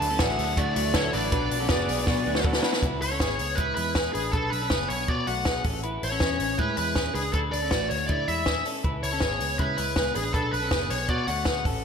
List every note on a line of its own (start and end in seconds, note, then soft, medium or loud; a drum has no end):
0.00 0.17 D2 loud
0.00 0.10 D3 medium
0.00 0.10 F#3 medium
0.00 0.13 F#4 medium
0.00 0.13 A4 medium
0.00 0.13 D5 medium
0.00 0.13 E5 medium
0.00 0.20 A5 loud
0.00 open hi-hat medium
0.09 0.28 F#3 medium
0.09 0.28 A3 medium
0.09 0.20 C#4 medium
0.09 0.27 E4 medium
0.09 0.19 A4 medium
0.18 0.36 A1 medium
0.18 0.55 D4 medium
0.18 0.31 F#4 loud
0.18 0.55 G#4 medium
0.18 0.31 A4 medium
0.18 0.32 D5 medium
0.18 0.31 E5 loud
0.18 0.59 F#5 medium
0.18 kick loud
0.18 snare loud
0.18 hi-hat pedal medium
0.18 ride medium
0.28 0.55 D3 medium
0.28 0.56 F#3 medium
0.28 0.56 A3 medium
0.28 0.57 E4 medium
0.38 0.54 D2 medium
0.38 0.50 F#4 medium
0.38 0.50 A4 medium
0.38 0.51 D5 medium
0.38 0.50 E5 medium
0.38 open hi-hat medium
0.56 0.85 D3 medium
0.56 0.73 D3 loud
0.56 0.85 F#3 medium
0.56 0.85 A3 medium
0.56 0.75 A3 medium
0.56 0.84 E4 medium
0.56 0.69 F#4 medium
0.56 0.74 F#4 medium
0.56 0.70 A4 medium
0.56 0.70 D5 medium
0.56 0.95 D5 medium
0.56 0.70 F#5 medium
0.56 kick loud
0.56 hi-hat pedal medium
0.56 ride medium
0.76 1.08 D2 loud
0.76 0.95 A3 medium
0.76 0.94 F#4 medium
0.76 0.88 F#4 medium
0.76 0.88 A4 medium
0.76 0.88 D5 medium
0.76 0.88 F#5 medium
0.76 open hi-hat medium
0.85 1.12 D3 medium
0.85 1.13 F#3 medium
0.85 1.13 A3 medium
0.85 1.13 E4 medium
0.94 1.13 D4 medium
0.94 1.07 F#4 loud
0.94 1.13 A4 medium
0.94 1.07 A4 medium
0.94 1.13 C#5 medium
0.94 1.07 D5 medium
0.94 1.07 E5 loud
0.94 kick loud
0.94 snare loud
0.94 ride medium
1.13 1.30 A1 medium
1.13 1.31 D3 medium
1.13 1.31 F#3 medium
1.13 1.33 A3 medium
1.13 1.32 D4 medium
1.13 1.33 E4 medium
1.13 1.26 F#4 medium
1.13 1.26 A4 medium
1.13 1.31 B4 medium
1.13 2.45 D5 medium
1.13 1.26 D5 medium
1.13 1.26 F#5 medium
1.13 open hi-hat medium
1.31 1.48 B1 loud
1.31 1.60 B2 medium
1.31 1.60 F#3 medium
1.31 1.59 B3 medium
1.31 1.59 D4 medium
1.31 1.58 D4 medium
1.31 1.45 F#4 loud
1.31 1.59 B4 medium
1.31 1.45 B4 medium
1.31 1.45 D5 medium
1.31 1.45 F#5 loud
1.31 kick loud
1.31 hi-hat pedal medium
1.31 ride medium
1.51 1.67 B1 loud
1.51 1.63 F#4 medium
1.51 1.64 B4 medium
1.51 1.64 D5 medium
1.51 1.64 F#5 medium
1.51 open hi-hat medium
1.60 1.78 F#3 medium
1.60 1.78 B3 medium
1.60 1.70 C#4 medium
1.60 1.78 D4 medium
1.60 1.69 A4 medium
1.69 2.05 B3 medium
1.69 1.82 F#4 loud
1.69 2.05 G#4 medium
1.69 1.82 B4 loud
1.69 1.82 D5 loud
1.69 1.82 F#5 loud
1.69 kick loud
1.69 snare loud
1.69 ride medium
1.79 2.05 B2 medium
1.79 2.06 F#3 medium
1.79 2.06 B3 medium
1.79 2.07 D4 medium
1.88 2.04 B1 medium
1.88 2.02 F#4 medium
1.88 2.02 B4 medium
1.88 2.07 D5 medium
1.88 2.02 F#5 loud
1.88 open hi-hat medium
2.06 2.34 B2 medium
2.06 2.23 B2 loud
2.06 2.34 F#3 medium
2.06 2.34 B3 medium
2.06 2.27 B3 medium
2.06 2.33 D4 medium
2.06 2.25 F#4 medium
2.06 2.20 F#4 medium
2.06 2.20 B4 medium
2.06 2.20 D5 medium
2.06 2.26 F#5 medium
2.06 kick loud
2.06 snare medium
2.26 2.58 D2 medium
2.26 2.45 A3 medium
2.26 2.45 F#4 medium
2.26 2.39 F#4 medium
2.26 2.39 B4 medium
2.26 2.39 D5 medium
2.26 2.39 F#5 loud
2.26 2.44 G#5 medium
2.34 2.63 B2 medium
2.34 2.63 F#3 medium
2.34 2.64 B3 medium
2.34 2.63 D4 medium
2.34 snare medium
2.45 2.64 D4 medium
2.45 2.57 F#4 loud
2.45 2.64 A4 medium
2.45 2.58 B4 loud
2.45 2.58 D5 loud
2.45 2.57 F#5 loud
2.45 2.63 A5 medium
2.45 kick loud
2.53 snare medium
2.63 2.83 B2 medium
2.63 2.83 F#3 medium
2.63 2.83 B3 medium
2.63 2.83 D4 medium
2.63 2.77 F#4 medium
2.63 2.81 B4 medium
2.63 2.77 B4 medium
2.63 2.77 D5 medium
2.63 2.77 F#5 loud
2.63 2.82 B5 medium
2.63 snare loud
2.73 snare loud
2.83 2.99 C#2 medium
2.83 3.10 E4 medium
2.83 3.09 B4 medium
2.83 kick medium
2.83 closed hi-hat medium
3.02 3.18 C#2 medium
3.02 3.60 C#5 medium
3.02 open hi-hat medium
3.11 3.21 C#4 medium
3.11 3.20 A4 medium
3.20 3.36 G#1 medium
3.20 3.56 B3 medium
3.20 3.56 G#4 medium
3.20 kick loud
3.20 snare loud
3.20 closed hi-hat medium
3.39 3.71 C#2 medium
3.39 open hi-hat medium
3.55 3.76 G#3 medium
3.55 3.75 E4 medium
3.55 3.74 B4 medium
3.55 kick medium
3.55 closed hi-hat medium
3.75 4.09 E2 medium
3.75 3.96 G#3 medium
3.75 3.95 E4 medium
3.75 4.13 B4 medium
3.75 open hi-hat medium
3.95 4.15 B3 medium
3.95 4.14 G#4 medium
3.95 kick loud
3.95 snare loud
3.95 closed hi-hat medium
4.13 4.31 A1 medium
4.13 4.33 D4 medium
4.13 4.32 G#4 medium
4.13 4.32 B4 medium
4.13 open hi-hat medium
4.32 4.49 B1 medium
4.32 4.60 D4 medium
4.32 4.50 A4 medium
4.32 4.60 B4 medium
4.32 kick loud
4.32 closed hi-hat medium
4.50 4.72 B1 medium
4.50 4.90 B4 medium
4.50 open hi-hat medium
4.62 4.72 C#4 soft
4.62 4.71 A4 medium
4.70 4.87 F#1 medium
4.70 5.07 B3 medium
4.70 5.07 G#4 medium
4.70 kick loud
4.70 snare loud
4.70 closed hi-hat medium
4.88 5.06 B1 medium
4.88 5.08 C#5 medium
4.88 open hi-hat medium
5.08 5.25 B2 medium
5.08 5.28 B3 medium
5.08 5.26 F#4 medium
5.08 5.28 D5 medium
5.08 kick medium
5.08 closed hi-hat medium
5.27 5.59 B1 medium
5.27 5.47 A3 medium
5.27 5.46 F#4 medium
5.27 5.62 F#5 medium
5.27 open hi-hat medium
5.45 5.65 B3 medium
5.45 5.65 G#4 medium
5.45 kick loud
5.45 snare loud
5.45 closed hi-hat medium
5.64 5.97 A1 medium
5.64 5.84 C#4 medium
5.64 5.83 A4 medium
5.64 kick loud
5.64 open hi-hat medium
5.83 6.10 E4 medium
5.83 6.10 B4 medium
5.83 closed hi-hat medium
6.03 6.19 A1 medium
6.03 6.61 C#5 medium
6.03 open hi-hat medium
6.11 6.21 C#4 medium
6.11 6.21 A4 medium
6.20 6.37 E2 medium
6.20 6.57 C#4 medium
6.20 6.57 G#4 medium
6.20 kick loud
6.20 snare loud
6.20 closed hi-hat medium
6.40 6.56 A1 medium
6.40 open hi-hat medium
6.58 6.75 A2 medium
6.58 6.77 G#3 medium
6.58 6.76 E4 medium
6.58 6.77 B4 medium
6.58 kick medium
6.58 closed hi-hat medium
6.77 7.10 E2 medium
6.77 6.97 G#3 medium
6.77 6.96 E4 medium
6.77 7.14 B4 medium
6.77 open hi-hat medium
6.95 7.15 C#4 medium
6.95 7.15 G#4 medium
6.95 kick loud
6.95 snare loud
6.95 closed hi-hat medium
7.14 7.31 C#2 medium
7.14 7.34 D4 medium
7.14 7.33 G#4 medium
7.14 7.33 B4 medium
7.14 open hi-hat medium
7.33 7.50 D2 medium
7.33 7.61 D4 medium
7.33 7.38 A4 medium
7.33 7.61 B4 medium
7.33 kick medium
7.33 closed hi-hat medium
7.52 7.69 D2 medium
7.52 7.89 D5 medium
7.52 open hi-hat medium
7.62 7.72 C#4 soft
7.62 7.72 A4 medium
7.71 7.88 A1 medium
7.71 8.07 A3 medium
7.71 8.07 F#4 medium
7.71 kick loud
7.71 snare loud
7.71 closed hi-hat medium
7.90 8.07 D2 medium
7.90 8.07 C#5 medium
7.90 open hi-hat medium
8.07 8.25 D3 medium
8.07 8.28 A3 medium
8.07 8.27 E4 medium
8.07 8.28 D5 medium
8.07 kick loud
8.07 closed hi-hat medium
8.28 8.60 E2 medium
8.28 8.47 G#3 medium
8.28 8.46 E4 medium
8.28 8.66 E5 medium
8.28 open hi-hat medium
8.46 8.66 D4 medium
8.46 8.65 G#4 medium
8.46 kick loud
8.46 snare loud
8.46 closed hi-hat medium
8.65 8.85 C#4 soft
8.65 8.84 A4 medium
8.65 open hi-hat medium
8.84 9.00 C#2 medium
8.84 9.11 E4 medium
8.84 9.11 B4 medium
8.84 kick medium
8.84 closed hi-hat medium
9.03 9.19 C#2 medium
9.03 9.61 C#5 medium
9.03 open hi-hat medium
9.13 9.23 C#4 medium
9.13 9.22 A4 medium
9.20 9.38 G#1 medium
9.20 9.58 B3 medium
9.20 9.58 G#4 medium
9.20 kick loud
9.20 snare loud
9.20 closed hi-hat medium
9.40 9.57 C#2 medium
9.40 open hi-hat medium
9.59 9.76 C#3 loud
9.59 9.77 G#3 medium
9.59 9.76 E4 medium
9.59 9.76 B4 medium
9.59 kick medium
9.59 closed hi-hat medium
9.78 10.10 C#2 medium
9.78 9.97 G#3 medium
9.78 9.97 E4 medium
9.78 10.16 B4 medium
9.78 open hi-hat medium
9.96 10.16 B3 medium
9.96 10.15 G#4 medium
9.96 kick loud
9.96 snare loud
9.96 closed hi-hat medium
10.15 10.34 A1 medium
10.15 10.34 D4 soft
10.15 10.34 G#4 medium
10.15 10.33 B4 medium
10.15 open hi-hat medium
10.34 10.51 B1 loud
10.34 10.61 D4 medium
10.34 10.52 A4 medium
10.34 10.61 B4 medium
10.34 kick loud
10.34 closed hi-hat medium
10.53 10.69 B1 medium
10.53 10.92 B4 medium
10.53 open hi-hat medium
10.62 10.73 C#4 medium
10.62 10.71 A4 medium
10.71 10.88 F#1 medium
10.71 11.08 B3 medium
10.71 11.07 G#4 medium
10.71 kick loud
10.71 snare loud
10.90 11.07 B1 medium
10.90 11.08 C#5 medium
10.90 open hi-hat medium
11.08 11.25 B2 medium
11.08 11.29 B3 medium
11.08 11.26 F#4 medium
11.08 11.29 D5 medium
11.08 kick medium
11.08 closed hi-hat medium
11.27 11.67 D2 medium
11.27 11.47 A3 medium
11.27 11.46 F#4 medium
11.27 11.63 F#5 medium
11.27 open hi-hat medium
11.45 11.66 B3 medium
11.45 11.65 G#4 medium
11.45 kick loud
11.45 snare loud
11.45 closed hi-hat medium
11.65 11.84 A1 medium
11.65 11.84 C#4 soft
11.65 11.84 A4 medium
11.65 kick medium
11.65 open hi-hat medium